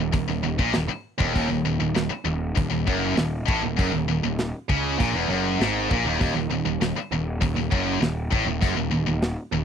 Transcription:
Already playing: picked electric bass D#1, distorted electric guitar D#2
0.13 picked electric bass D#1, distorted electric guitar D#2, kick, open hi-hat
0.28 picked electric bass D#1, distorted electric guitar D#2
0.43 picked electric bass D#1, distorted electric guitar D#2
0.59 picked electric bass A#1, distorted electric guitar A#2, kick
0.73 picked electric bass D#1, distorted electric guitar D#2, snare, open hi-hat
0.89 muted distorted electric guitar stroke, muted picked electric bass stroke
1.19 picked electric bass D#1, distorted electric guitar D#2, kick
1.34 picked electric bass D#1, distorted electric guitar D#2, kick, open hi-hat
1.49 picked electric bass D#1, distorted electric guitar D#2
1.65 picked electric bass D#1, distorted electric guitar D#2
1.80 picked electric bass D#1, distorted electric guitar D#2
1.95 picked electric bass D#1, distorted electric guitar D#2, snare, open hi-hat
2.10 muted distorted electric guitar stroke, muted picked electric bass stroke
2.25 picked electric bass D#1, distorted electric guitar D#2
2.56 picked electric bass D#1, distorted electric guitar D#2, kick, open hi-hat
2.70 picked electric bass D#1, distorted electric guitar D#2
2.87 picked electric bass F#1, distorted electric guitar F#2, kick
3.16 picked electric bass D#1, distorted electric guitar D#2, snare, open hi-hat
3.46 picked electric bass A1, distorted electric guitar A2, kick
3.62 picked electric bass D#1, distorted electric guitar D#2
3.77 picked electric bass F#1, distorted electric guitar F#2, kick, open hi-hat
3.92 picked electric bass D#1, distorted electric guitar D#2
4.08 picked electric bass D#1, distorted electric guitar D#2
4.23 picked electric bass D#1, distorted electric guitar D#2
4.39 snare, open hi-hat
4.69 picked electric bass C#2, distorted electric guitar C#3, kick
4.99 picked electric bass A#1, distorted electric guitar A#2, kick, open hi-hat
5.14 picked electric bass E1, distorted electric guitar E2
5.28 picked electric bass F#1, distorted electric guitar F#2
5.60 picked electric bass G#1, distorted electric guitar G#2, snare, open hi-hat
5.91 picked electric bass A#1, distorted electric guitar A#2, kick
6.05 picked electric bass D#1, distorted electric guitar D#2
6.20 picked electric bass D#1, distorted electric guitar D#2, kick, open hi-hat
6.34 picked electric bass D#1, distorted electric guitar D#2
6.50 picked electric bass D#1, distorted electric guitar D#2
6.65 picked electric bass D#1, distorted electric guitar D#2
6.80 picked electric bass D#1, distorted electric guitar D#2, snare, open hi-hat
6.96 muted picked electric bass stroke, muted distorted electric guitar stroke
7.11 picked electric bass D#1, distorted electric guitar D#2
7.41 picked electric bass D#1, distorted electric guitar D#2, kick, open hi-hat
7.56 picked electric bass D#1, distorted electric guitar D#2
7.71 picked electric bass F#1, distorted electric guitar F#2, kick
8.01 picked electric bass D#1, distorted electric guitar D#2, snare, open hi-hat
8.31 picked electric bass A1, distorted electric guitar A2, kick
8.46 picked electric bass D#1, distorted electric guitar D#2
8.62 picked electric bass F#1, distorted electric guitar F#2, kick, open hi-hat
8.77 picked electric bass D#1, distorted electric guitar D#2
8.91 picked electric bass D#1, distorted electric guitar D#2
9.06 picked electric bass D#1, distorted electric guitar D#2
9.22 snare, open hi-hat
9.52 picked electric bass D#1, distorted electric guitar D#2

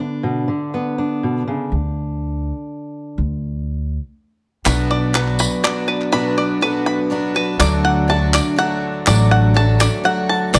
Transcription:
Already playing: steel-string acoustic guitar D3 B3
0.00 steel-string acoustic guitar D4
0.23 steel-string acoustic guitar B2
0.48 steel-string acoustic guitar D3
0.74 steel-string acoustic guitar B3
0.98 steel-string acoustic guitar D4
1.23 steel-string acoustic guitar B2
1.48 steel-string acoustic guitar C#3
1.72 upright bass D2
3.18 upright bass D2
4.64 upright bass B1, upright piano B1 B2 B3 D4 F#4 D5, twelve-string acoustic guitar B2 F#3 B3 D4 F#4, tonewheel organ F#3 B3 D4, five-string banjo B5, clap, tambourine
4.91 five-string banjo D5
5.13 twelve-string acoustic guitar F#3 B3 D4 F#4, upright piano B3 D4 F#4 D5, five-string banjo B4, clap
5.28 clap
5.39 five-string banjo B5, tambourine
5.63 twelve-string acoustic guitar F#3 B3 D4 F#4, upright piano B3 D4 F#4 D5, five-string banjo D5, clap
5.88 five-string banjo B4
6.01 clap
6.12 upright piano B1 B2 B3 D4 F#4 D5, twelve-string acoustic guitar B2 F#3 B3 D4 F#4, five-string banjo B5
6.38 five-string banjo D5
6.61 twelve-string acoustic guitar F#3 B3 D4 F#4, upright piano B3 D4 F#4 A4, five-string banjo B4
6.86 five-string banjo B5
7.10 twelve-string acoustic guitar F#3 B3 D4 F#4, upright piano B3 D4 F#4 D5
7.34 twelve-string acoustic guitar B3 D4 F#4, five-string banjo B4
7.59 upright bass D2, upright piano D2 D3 F#3 A3 D4 A4 D5, twelve-string acoustic guitar D3 F#3 A3 D4 F#4, five-string banjo D5, clap, tambourine
7.85 five-string banjo F#5
8.08 twelve-string acoustic guitar F#3 A3 D4 F#4, upright piano F#3 A3 D4 A4 D5, five-string banjo A5
8.34 five-string banjo D5, clap, tambourine
8.56 twelve-string acoustic guitar F#3 A3 D4 F#4, upright piano F#3 A3 D4 A4 D5, five-string banjo F#5
9.07 upright bass A1, upright piano D2 D3 F#3 A3 D4 A4 D5, twelve-string acoustic guitar D3 F#3 A3 D4 F#4, five-string banjo D5, clap, tambourine
9.31 five-string banjo F#5, upright piano A5
9.54 twelve-string acoustic guitar F#3 A3 D4 F#4, upright piano F#3 A3 D4 A4 D5, five-string banjo A5
9.79 twelve-string acoustic guitar A3 D4 F#4, five-string banjo D5, clap, tambourine
10.04 twelve-string acoustic guitar F#3 A3 D4 F#4, upright piano F#3 A3 D4 A4 D5 F#5, five-string banjo F#5
10.29 upright piano D5, five-string banjo A5
10.53 upright piano B1 B2 F#3 B3 D4 B4 D5, upright bass B1, twelve-string acoustic guitar B2 F#3 B3 D4 F#4, five-string banjo D5, clap, tambourine

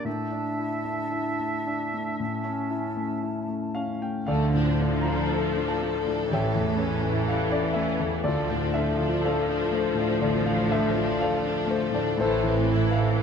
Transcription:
0.05 grand piano A2, clarinet D4, oboe E5, flute A5
0.32 grand piano D4
0.60 grand piano E4
0.85 grand piano A3
1.12 grand piano E4
1.40 grand piano A3
1.67 grand piano D4
1.93 grand piano A3
2.20 grand piano A2, clarinet C#4, flute A5
2.45 grand piano C#4
2.70 grand piano E4
2.97 grand piano A3
3.23 grand piano E4
3.48 grand piano A3
3.75 grand piano C#4 F5
4.02 grand piano A3 G5
4.27 double bass section D2, grand piano D2 A4 D5 F5, cello section D3, french horn section F3 A4, viola section F3, violin section A3 A4
4.55 grand piano A2, violin section D4
4.81 violin section A3, grand piano D4
5.01 grand piano A#5
5.08 violin section D4, grand piano F4
5.33 violin section A3, grand piano A4
5.56 grand piano D4, violin section D4
5.68 grand piano A5
5.81 violin section A3, grand piano A3
6.04 grand piano A2, violin section D4
6.28 double bass section A1, grand piano A1, cello section A2, viola section E3, french horn section E3, violin section G3
6.33 grand piano C#5 E5 G5
6.55 grand piano E2, violin section A3
6.77 grand piano C#4, violin section C#4
7.02 violin section A3, grand piano E4
7.26 violin section G3, grand piano A4 F5
7.50 violin section A3, grand piano C#4 D5
7.74 grand piano A3 E5, violin section C#4
8.00 grand piano E2, violin section A3
8.24 grand piano D2 F4 A4 D5, double bass section D2, cello section D3, viola section F3, french horn section F3 A4, violin section A3 A4
8.50 grand piano A2, violin section D4
8.74 violin section A3, grand piano D4 E5
8.97 grand piano F4
9.01 violin section D4
9.21 grand piano A4 D5 F5
9.26 violin section A3, grand piano A4
9.47 grand piano D4, violin section D4
9.71 grand piano A3 C5, violin section A3
9.94 grand piano A2, violin section D4
10.20 double bass section A1, grand piano D2 F4 A4 D5, cello section A2, violin section A3
10.43 grand piano A3 F5
10.48 violin section D4
10.68 grand piano D4 E5
10.74 violin section A3
10.94 violin section D4, grand piano F4
11.18 violin section A3, grand piano A4 D5 F5
11.42 grand piano D4, violin section D4
11.67 grand piano A3 C5, violin section A3
11.91 grand piano A2 D5, violin section D4
12.17 double bass section A1, grand piano A2 E4 A4 C5, cello section A2, french horn section E3, viola section E3, violin section A3
12.43 grand piano E3
12.48 violin section C4
12.71 grand piano E4, violin section E4
12.91 grand piano F5
12.98 violin section C4, grand piano A4

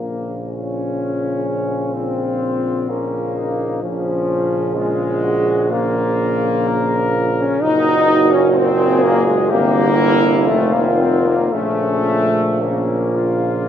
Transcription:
Already playing: tuba A#1, trombone C#3, trombone section A#3, french horn section F4
0.45 trombone section C#4
1.92 trombone section C4, cornet F4
2.89 trombone C#3, trombone section A#3, cornet C#4, french horn section F4
3.36 cornet D#4
3.82 tuba A#1, trombone C#3, trombone section F3, cornet C#4, french horn section F4
4.76 trombone section G#3, cornet F4
5.24 cornet F#4
5.70 trombone C#3, trombone section A#3, cornet F4, french horn section F4
6.68 cornet A#4
7.39 trombone section C#4
7.62 tuba F#1, trombone A#2, trombone section D#4, french horn section F#4
8.32 trombone section C#4
8.56 trombone section C4, cornet G#4
9.03 trombone section A#3
9.26 trombone section G#3
9.50 tuba G1, trombone C3, trombone section A#3, french horn section E4, cornet G4
10.00 trombone C3, cornet E4
10.47 tuba F1, trombone D#3, trombone section A3, cornet F4, french horn section F4
10.73 trombone section A#3
11.00 trombone section C4
11.26 trombone section A#3
11.52 tuba A#1, trombone C#3, trombone section A3, cornet C#4, french horn section F4
12.61 trombone C#3, trombone section A#3, cornet C#4, french horn section F4
13.15 cornet F4

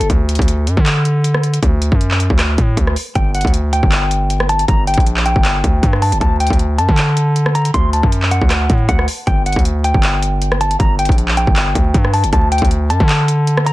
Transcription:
0.01 808-style bass F#1, closed hi-hat
0.10 808-style bass D2, kick, closed hi-hat
0.29 closed hi-hat
0.35 808-style bass D2, kick, closed hi-hat
0.42 closed hi-hat
0.48 closed hi-hat
0.67 808-style bass F#2, closed hi-hat
0.77 808-style bass D3, kick
0.86 clap, closed hi-hat
1.05 closed hi-hat
1.24 closed hi-hat
1.35 cross-stick
1.43 closed hi-hat
1.54 closed hi-hat
1.63 808-style bass D2, kick, closed hi-hat
1.82 closed hi-hat
1.92 808-style bass F#2, kick
2.01 closed hi-hat
2.11 clap
2.20 closed hi-hat
2.30 808-style bass D2, kick
2.39 cross-stick, clap, closed hi-hat
2.58 808-style bass A2, kick, closed hi-hat
2.77 808-style bass D2, kick, closed hi-hat
2.87 cross-stick
2.96 open hi-hat
3.15 808-style bass G1, clean electric guitar G5, kick, closed hi-hat
3.35 clean electric guitar F#5, closed hi-hat
3.41 808-style bass D2, kick, closed hi-hat
3.47 closed hi-hat
3.54 closed hi-hat
3.73 clean electric guitar G5, closed hi-hat
3.83 808-style bass G1, kick
3.92 clap, closed hi-hat
4.11 closed hi-hat
4.30 closed hi-hat
4.40 cross-stick
4.49 clean electric guitar A5, closed hi-hat
4.59 closed hi-hat
4.68 808-style bass G1, clean electric guitar A#5, kick, closed hi-hat
4.87 clean electric guitar G5, closed hi-hat
4.94 808-style bass A#1, kick, closed hi-hat
5.00 closed hi-hat
5.07 closed hi-hat
5.17 clap
5.26 clean electric guitar G5, closed hi-hat
5.36 808-style bass G1, kick
5.45 clap, closed hi-hat
5.64 808-style bass D2, kick, closed hi-hat
5.83 808-style bass G2, kick, closed hi-hat
5.93 cross-stick
6.02 clean electric guitar A5, closed hi-hat, open hi-hat
6.12 808-style bass F#1, closed hi-hat
6.21 808-style bass D2, clean electric guitar A5, kick, closed hi-hat
6.40 clean electric guitar G5, closed hi-hat
6.47 808-style bass D2, kick, closed hi-hat
6.53 closed hi-hat
6.59 closed hi-hat
6.78 808-style bass F#2, clean electric guitar A5, closed hi-hat
6.89 808-style bass D3, kick
6.98 clap, closed hi-hat
7.17 closed hi-hat
7.36 closed hi-hat
7.46 cross-stick
7.55 clean electric guitar A#5, closed hi-hat
7.65 closed hi-hat
7.74 808-style bass D2, clean electric guitar C6, kick, closed hi-hat
7.93 clean electric guitar A5, closed hi-hat
8.03 808-style bass F#2, kick
8.12 closed hi-hat
8.22 clap
8.31 clean electric guitar F#5, closed hi-hat
8.42 808-style bass D2, kick
8.50 cross-stick, clap, closed hi-hat
8.70 808-style bass A2, kick, closed hi-hat
8.89 808-style bass D2, clean electric guitar F#5, kick, closed hi-hat
8.99 cross-stick
9.08 open hi-hat
9.27 808-style bass G1, clean electric guitar G5, kick, closed hi-hat
9.46 clean electric guitar F#5, closed hi-hat
9.52 808-style bass D2, kick, closed hi-hat
9.59 closed hi-hat
9.65 closed hi-hat
9.84 clean electric guitar G5, closed hi-hat
9.94 808-style bass G1, kick
10.03 clap, closed hi-hat
10.23 closed hi-hat
10.42 closed hi-hat
10.52 cross-stick
10.61 clean electric guitar A5, closed hi-hat
10.71 closed hi-hat
10.80 808-style bass G1, clean electric guitar A#5, kick, closed hi-hat
10.99 clean electric guitar G5, closed hi-hat
11.05 808-style bass A#1, kick, closed hi-hat
11.12 closed hi-hat
11.18 closed hi-hat
11.28 clap
11.37 clean electric guitar G5, closed hi-hat
11.47 808-style bass G1, kick
11.56 clap, closed hi-hat
11.75 808-style bass D2, kick, closed hi-hat
11.94 808-style bass G2, kick, closed hi-hat
12.05 cross-stick
12.14 clean electric guitar A5, closed hi-hat, open hi-hat
12.24 808-style bass F#1, closed hi-hat
12.33 808-style bass D2, clean electric guitar A5, kick, closed hi-hat
12.52 clean electric guitar G5, closed hi-hat
12.58 808-style bass D2, kick, closed hi-hat
12.65 closed hi-hat
12.71 closed hi-hat
12.90 808-style bass F#2, clean electric guitar A5, closed hi-hat
13.00 808-style bass D3, kick
13.09 clap, closed hi-hat
13.28 closed hi-hat
13.47 closed hi-hat
13.57 cross-stick
13.66 clean electric guitar A#5, closed hi-hat

